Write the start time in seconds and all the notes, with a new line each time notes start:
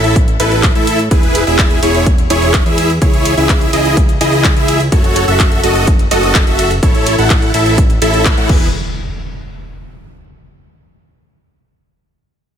Already playing: A1 E4 A4 E5
0.04 closed hi-hat
0.16 kick, closed hi-hat
0.28 closed hi-hat
0.40 A1 E4 A4 B4, open hi-hat
0.52 closed hi-hat
0.63 kick, clap, closed hi-hat
0.75 A2 E4 A4 E5, closed hi-hat
0.87 open hi-hat
0.99 closed hi-hat
1.11 E1 E4 G#4 B4, kick, closed hi-hat
1.23 closed hi-hat
1.35 open hi-hat, ride
1.47 E1 E4 G#4 E5, closed hi-hat
1.59 kick, clap, closed hi-hat
1.71 closed hi-hat
1.83 E1 E4 G#4 C#5, open hi-hat, ride
1.95 closed hi-hat
2.06 kick, closed hi-hat
2.18 closed hi-hat
2.30 E1 E4 G#4 C#5, open hi-hat, ride
2.42 closed hi-hat
2.54 kick, clap, closed hi-hat
2.66 E2 E4 G#4 E5, closed hi-hat
2.78 open hi-hat, ride
2.90 closed hi-hat
3.02 C#2 E4 G#4 C#5, kick, closed hi-hat
3.14 closed hi-hat
3.25 open hi-hat, ride
3.37 C#2 E4 G#4 E5, closed hi-hat
3.49 kick, clap, closed hi-hat
3.61 closed hi-hat
3.73 C#2 E4 G#4 D#5, open hi-hat, ride
3.85 closed hi-hat
3.97 kick, closed hi-hat
4.09 closed hi-hat
4.21 C#2 E4 G#4 D#5, open hi-hat, ride
4.33 closed hi-hat
4.44 kick, clap, closed hi-hat
4.56 C#2 E4 G#4 E5, closed hi-hat
4.68 open hi-hat, ride
4.80 closed hi-hat
4.92 F#1 F#4 A4 C#5, kick, closed hi-hat
5.04 closed hi-hat
5.16 open hi-hat, ride
5.28 F#1 F#4 A4 E5, closed hi-hat
5.40 kick, clap, closed hi-hat
5.52 closed hi-hat
5.64 F#1 F#4 A4 D#5, open hi-hat, ride
5.75 closed hi-hat
5.87 kick, closed hi-hat
5.99 closed hi-hat
6.11 F#1 F#4 A4 D#5, open hi-hat, ride
6.23 closed hi-hat
6.35 kick, clap, closed hi-hat
6.47 F#1 F#4 A4 E5, closed hi-hat
6.59 open hi-hat, ride
6.71 closed hi-hat
6.83 A1 E4 A4 C#5, kick, closed hi-hat
6.95 closed hi-hat
7.06 open hi-hat, ride
7.18 A1 E4 A4 F#5, closed hi-hat
7.30 kick, clap, closed hi-hat
7.42 closed hi-hat
7.54 A1 E4 A4 E5, open hi-hat, ride
7.66 closed hi-hat
7.78 kick, closed hi-hat
7.90 closed hi-hat
8.02 A1 E4 A4 E5, open hi-hat, ride
8.14 closed hi-hat
8.25 kick, clap, closed hi-hat
8.37 A2 E4 A4 F#5, closed hi-hat
8.49 E1 E4 G#4 B4, kick, crash, impact